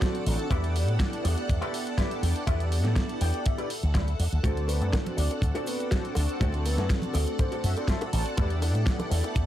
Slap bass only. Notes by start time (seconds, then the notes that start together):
0.26 A1
0.51 E2
0.88 A2
1.25 E2
1.49 E2
2.23 E2
2.47 E2
2.85 A2
3.21 E2
3.83 D2
4.20 E2
4.33 D2
4.44 D2
4.82 F#2
5.18 D2
5.42 D2
6.16 D2
6.41 D2
6.78 F#2
7.15 D2
7.64 F#2
8.13 A1
8.38 E2
8.75 A2
9.11 E2
9.36 E2